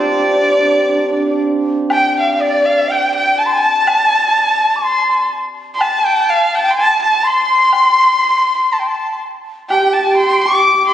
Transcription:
Already playing: hammered dulcimer C4 F4 G4, erhu D5
0.06 hammered dulcimer D4
0.12 hammered dulcimer D4
0.19 hammered dulcimer D4
0.28 hammered dulcimer D4
0.35 hammered dulcimer D4
0.46 hammered dulcimer D4
0.51 hammered dulcimer D4
0.58 hammered dulcimer D4
0.65 hammered dulcimer D4
0.73 hammered dulcimer D4
0.81 hammered dulcimer D4
0.89 hammered dulcimer D4
0.97 hammered dulcimer D4
1.04 hammered dulcimer D4
1.12 hammered dulcimer D4
1.20 hammered dulcimer D4
1.90 erhu G5, dizi A5, high woodblock
1.96 dizi G5
2.19 erhu F5
2.35 erhu F5, dizi F5
2.41 dizi D5, erhu D5
2.65 erhu F5
2.89 dizi G5, erhu G5
3.14 dizi G5, erhu G5
3.38 erhu A5, dizi A5
3.46 dizi C6
3.53 dizi G#5
3.64 dizi A5
3.87 high woodblock
4.76 dizi D6
4.83 dizi C6
5.75 dizi A5, erhu C6
5.81 erhu A5, high woodblock
6.06 erhu G5
6.30 erhu F5
6.55 erhu G5 A5
6.63 dizi G5
6.68 erhu G5 C6
6.75 dizi A5
6.80 erhu A5
7.02 erhu A5
7.24 dizi C6, erhu C6
7.73 high woodblock
8.73 dizi A5
8.80 dizi G5
8.87 dizi A5
9.70 hammered dulcimer G4, erhu G5, dizi A5, high woodblock
9.76 dizi G5
9.80 hammered dulcimer G4
9.86 hammered dulcimer G4
9.93 hammered dulcimer G4, erhu A5
10.01 hammered dulcimer G4
10.10 hammered dulcimer G4
10.15 hammered dulcimer G4, erhu C6
10.24 hammered dulcimer G4
10.30 hammered dulcimer G4
10.38 hammered dulcimer G4
10.42 hammered dulcimer G4, erhu D6
10.47 dizi D6
10.51 hammered dulcimer G4
10.61 hammered dulcimer G4
10.68 hammered dulcimer G4
10.74 hammered dulcimer G4
10.83 hammered dulcimer G4
10.87 hammered dulcimer G4, erhu C6

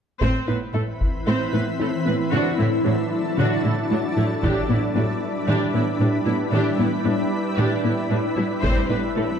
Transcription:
0.21 cello section A2, ambient pad E3 C4 E4 B4, synth arpeggio sound A3, viola section C4 C5, taiko
0.48 cello section A2, viola section B3 B4, synth arpeggio sound E4
0.74 cello section A2, viola section A3 A4, synth arpeggio sound E4
1.01 taiko
1.27 cello section A2, synth arpeggio sound A3, viola section C4 C5
1.53 cello section A2, viola section B3 B4, synth arpeggio sound E4
1.80 cello section A2, viola section A3 A4, synth arpeggio sound E4
2.06 cello section A2, viola section B3 B4, synth arpeggio sound C4
2.32 cello section A2, synth arpeggio sound D3, ambient pad F#3 D4 A4, viola section D4 F#4
2.58 cello section A2, synth arpeggio sound A3, viola section A3 E4
2.85 cello section A2, viola section F#3 D4, synth arpeggio sound A3
3.38 cello section A2, synth arpeggio sound D3, viola section D4 F#4
3.65 cello section A2, synth arpeggio sound A3, viola section A3 E4
3.91 cello section A2, viola section F#3 D4, synth arpeggio sound A3
4.17 cello section A2, synth arpeggio sound F#3, viola section A3 E4
4.43 cello section A2, synth arpeggio sound E3, ambient pad G3 E4 B4, viola section D4 G4, taiko
4.69 cello section A2, synth arpeggio sound B3, viola section B3 E4
4.96 cello section A2, viola section G3 D4, synth arpeggio sound B3
5.48 cello section A2, synth arpeggio sound E3, viola section D4 G4
5.74 cello section A2, synth arpeggio sound B3, viola section B3 E4
6.00 cello section A2, viola section G3 D4, synth arpeggio sound B3
6.26 cello section A2, synth arpeggio sound G3, viola section B3 E4
6.52 cello section A2, synth arpeggio sound E3, viola section D4 G4
6.78 cello section A2, viola section B3 E4, synth arpeggio sound B3
7.05 cello section A2, viola section G3 D4, synth arpeggio sound B3
7.57 cello section A2, synth arpeggio sound E3, viola section D4 G4
7.84 cello section A2, viola section B3 E4, synth arpeggio sound B3
8.11 cello section A2, viola section G3 D4, synth arpeggio sound B3
8.36 cello section A2, synth arpeggio sound G3, viola section B3 E4
8.63 cello section A2, ambient pad E3 C4, synth arpeggio sound A3, viola section C4 C5, taiko
8.89 cello section A2, viola section B3 B4, synth arpeggio sound E4
9.16 cello section A2, viola section A3 A4, synth arpeggio sound E4

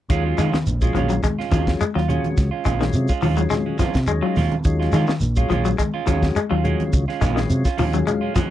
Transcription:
0.09 fingered electric bass D#2, tonewheel organ F#3 G#3 C#4 F4, clean electric guitar F#3 G#3 C#4 F4, kick, closed hi-hat, shekere
0.25 clean electric guitar G#3 C#4 F4
0.38 fingered electric bass D#3, clean electric guitar F#3 G#3 C#4 F4, snare, closed hi-hat, high conga, shekere
0.53 clean electric guitar D#3, muted fingered electric bass stroke, snare, high conga, shekere
0.66 fingered electric bass A#1, closed hi-hat, low conga, shekere
0.81 tonewheel organ F#3 G#3 C#4 F4, clean electric guitar G#3 C#4 F4, kick, shekere
0.95 fingered electric bass A#1, clean electric guitar F3 F#3 G#3 C#4 F4, closed hi-hat, high conga, low conga, shekere
1.10 clean electric guitar F#3, closed hi-hat, shekere
1.23 clean electric guitar G#3, kick, closed hi-hat, high conga, low conga, shekere
1.39 clean electric guitar G#3 C#4 F4, snare
1.51 fingered electric bass D#2, clean electric guitar F3 F#3 G#3 C#4 F4, tonewheel organ F#3 G#3 C#4 F4, kick, closed hi-hat, high conga, shekere
1.67 kick, snare, shekere
1.81 clean electric guitar G#3, muted fingered electric bass stroke, closed hi-hat, shekere
1.95 fingered electric bass D#2, clean electric guitar F#3 F4, muted clean electric guitar stroke, snare
2.08 clean electric guitar F#3 C#4 F4, tonewheel organ F#3 G#3 C#4 F#4, closed hi-hat, low conga, shekere
2.24 closed hi-hat, high conga
2.37 fingered electric bass C#2, kick, snare, closed hi-hat, shekere
2.51 clean electric guitar G#3 C#4 F4
2.65 fingered electric bass A#1, clean electric guitar G#3 C#4 F4, kick, closed hi-hat, high conga, shekere
2.80 clean electric guitar D#3, tonewheel organ F#3 G#3 C#4 F4, snare, shekere
2.93 fingered electric bass C3, closed hi-hat, shekere
3.08 clean electric guitar G#3 C#4 F4, kick, shekere
3.22 fingered electric bass D#2, clean electric guitar F3 F#3 G#3 C#4 F4, open hi-hat, high conga, low conga, shekere
3.36 tonewheel organ F#3 G#3 C#4 F4, clean electric guitar F#3, closed hi-hat, shekere
3.50 clean electric guitar G#3, snare, closed hi-hat, high conga, low conga, shekere
3.66 clean electric guitar G#3 C#4
3.79 clean electric guitar F3 F#3 G#3 C#4 F4, kick, snare, closed hi-hat, high conga, shekere
3.94 fingered electric bass C3, kick, snare, closed hi-hat, shekere
4.07 fingered electric bass D#2, tonewheel organ F#3 G#3 C#4 D#4, clean electric guitar G#3, closed hi-hat, shekere
4.22 clean electric guitar F#3 G#3 C#4 F4
4.36 fingered electric bass D#2, clean electric guitar F#3 G#3 C#4 F4, snare, open hi-hat, high conga, low conga, shekere
4.52 closed hi-hat, high conga
4.64 fingered electric bass D#2, tonewheel organ F#3 G#3 C#4 F4, kick, closed hi-hat, shekere
4.79 clean electric guitar G#3 C#4 F4, snare
4.92 fingered electric bass D#3, clean electric guitar F#3 G#3 C#4 F4, snare, closed hi-hat, high conga, shekere
5.07 clean electric guitar D#3, muted fingered electric bass stroke, snare, shekere
5.20 fingered electric bass A#1, closed hi-hat, shekere
5.36 tonewheel organ F#3 G#3 C#4 F4, clean electric guitar G#3 C#4 F4, kick, shekere
5.49 fingered electric bass A#1, clean electric guitar F3 F#3 G#3 C#4 F4, closed hi-hat, high conga, low conga, shekere
5.65 clean electric guitar F#3, closed hi-hat, shekere
5.78 clean electric guitar G#3, kick, closed hi-hat, high conga, shekere
5.94 clean electric guitar G#3 C#4 F4
6.05 fingered electric bass D#2, clean electric guitar F3 G#3 C#4 F4, tonewheel organ F#3 G#3 C#4 F#4, muted clean electric guitar stroke, kick, closed hi-hat, high conga, shekere
6.23 kick, snare, shekere
6.36 clean electric guitar G#3, muted fingered electric bass stroke, closed hi-hat, shekere
6.50 fingered electric bass D#2, clean electric guitar F#3 G#3 C#4 F4
6.64 tonewheel organ F#3 G#3 C#4 F4, clean electric guitar F#3 G#3 C#4, closed hi-hat, low conga, shekere
6.80 closed hi-hat, high conga
6.93 fingered electric bass C#2, kick, closed hi-hat, shekere
7.08 clean electric guitar G#3 C#4 F4, snare
7.21 fingered electric bass A#1, clean electric guitar F#3 G#3 C#4 F4, kick, snare, closed hi-hat, high conga, shekere
7.35 clean electric guitar D#3, tonewheel organ F#3 G#3 C#4 F4, snare, shekere
7.50 fingered electric bass C3, closed hi-hat, shekere
7.65 clean electric guitar C#4 F4, muted clean electric guitar stroke, kick, snare, shekere
7.77 fingered electric bass D#2, clean electric guitar F3 F#3 G#3 C#4 F4, tonewheel organ G#5, open hi-hat, high conga, low conga, shekere
7.93 tonewheel organ F#3 G#3 C#4 F4, clean electric guitar F#3, closed hi-hat, shekere
8.07 clean electric guitar G#3, tonewheel organ F5, closed hi-hat, low conga, shekere
8.21 clean electric guitar G#3 C#4 F4
8.35 clean electric guitar F3 F#3 G#3 C#4, tonewheel organ F#5, muted clean electric guitar stroke, kick, snare, closed hi-hat, high conga, shekere

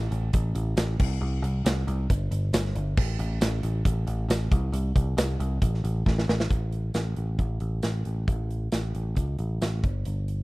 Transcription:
0.11 picked electric bass A1, closed hi-hat
0.33 picked electric bass A1, kick, closed hi-hat
0.55 picked electric bass A1, closed hi-hat
0.77 picked electric bass A1, snare, closed hi-hat, tambourine
1.00 picked electric bass C2, kick, crash
1.21 picked electric bass C2
1.42 picked electric bass C2, closed hi-hat
1.65 picked electric bass C2, snare, closed hi-hat, tambourine
1.87 picked electric bass C2, closed hi-hat
2.10 picked electric bass G1, kick, closed hi-hat
2.31 picked electric bass G1, closed hi-hat
2.53 picked electric bass G1, snare, closed hi-hat, tambourine
2.66 snare
2.75 picked electric bass G1, closed hi-hat
2.97 picked electric bass A1, kick, crash
3.19 picked electric bass A1, closed hi-hat
3.41 picked electric bass A1, snare, closed hi-hat, tambourine
3.63 picked electric bass A1, closed hi-hat
3.85 picked electric bass A1, kick, closed hi-hat
4.07 picked electric bass A1, closed hi-hat
4.28 picked electric bass A1, snare, closed hi-hat, tambourine
4.51 picked electric bass C2, kick, closed hi-hat
4.72 picked electric bass C2, closed hi-hat
4.95 picked electric bass C2, kick, closed hi-hat
5.17 picked electric bass C2, snare, closed hi-hat, tambourine
5.40 picked electric bass C2, closed hi-hat
5.62 picked electric bass A1, kick, closed hi-hat
5.74 snare
5.84 picked electric bass A1, closed hi-hat
6.06 picked electric bass A1, kick, snare
6.18 snare
6.28 picked electric bass A1, snare
6.40 snare
6.50 picked electric bass A1, kick, closed hi-hat
6.72 closed hi-hat
6.94 picked electric bass A1, snare, closed hi-hat, tambourine
7.17 picked electric bass A1, closed hi-hat
7.39 picked electric bass A1, kick, closed hi-hat
7.60 picked electric bass A1, closed hi-hat
7.83 picked electric bass A1, snare, closed hi-hat, tambourine
8.05 picked electric bass A1, closed hi-hat
8.28 picked electric bass A1, kick, closed hi-hat
8.51 closed hi-hat
8.72 picked electric bass A1, snare, closed hi-hat, tambourine
8.95 picked electric bass A1, closed hi-hat
9.16 picked electric bass C#2, kick, closed hi-hat
9.39 picked electric bass A1, closed hi-hat
9.61 picked electric bass A1, snare, closed hi-hat, tambourine
9.84 picked electric bass G1, kick, closed hi-hat
10.05 picked electric bass G1, closed hi-hat
10.28 closed hi-hat

